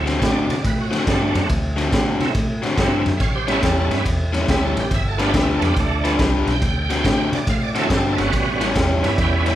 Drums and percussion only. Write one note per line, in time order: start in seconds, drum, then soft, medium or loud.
0.07 snare soft
0.07 ride medium
0.22 kick medium
0.22 snare loud
0.22 ride medium
0.50 snare soft
0.50 ride medium
0.65 kick medium
0.65 snare soft
0.65 ride medium
0.93 snare soft
0.93 ride medium
1.07 kick medium
1.07 snare loud
1.07 ride medium
1.35 snare soft
1.35 ride medium
1.49 kick medium
1.49 snare soft
1.49 ride medium
1.78 snare soft
1.78 ride medium
1.92 kick medium
1.92 snare loud
1.92 ride medium
2.20 snare soft
2.20 ride medium
2.35 kick medium
2.35 snare soft
2.35 ride medium
2.63 snare soft
2.63 ride medium
2.78 kick medium
2.78 snare loud
2.78 ride medium
3.06 snare soft
3.06 ride medium
3.20 kick medium
3.20 snare soft
3.20 ride medium
3.48 snare soft
3.48 ride medium
3.63 kick medium
3.63 snare loud
3.63 ride medium
3.91 snare soft
3.91 ride medium
4.06 kick medium
4.06 snare soft
4.06 ride medium
4.34 snare soft
4.34 ride medium
4.48 kick medium
4.48 snare loud
4.48 ride medium
4.77 snare soft
4.77 ride medium
4.91 kick medium
4.91 snare soft
4.91 ride medium
5.19 snare soft
5.19 ride medium
5.34 kick medium
5.34 snare loud
5.34 ride medium
5.62 snare soft
5.62 ride medium
5.76 kick medium
5.76 snare soft
5.76 ride medium
6.05 snare soft
6.05 ride medium
6.19 kick medium
6.19 snare loud
6.19 ride medium
6.47 snare soft
6.47 ride medium
6.62 kick medium
6.62 snare soft
6.62 ride medium
6.90 snare soft
6.90 ride medium
7.05 kick medium
7.05 snare loud
7.05 ride medium
7.33 snare soft
7.33 ride medium
7.47 kick medium
7.47 snare soft
7.47 ride medium
7.75 snare soft
7.75 ride medium
7.90 kick medium
7.90 snare loud
7.90 ride medium
8.18 snare soft
8.18 ride medium
8.33 kick medium
8.33 snare soft
8.33 ride medium
8.61 snare soft
8.61 ride medium
8.75 kick loud
8.75 snare loud
8.75 ride medium
9.04 snare soft
9.04 ride medium
9.18 kick medium
9.18 snare soft
9.18 ride medium
9.46 snare soft
9.46 ride medium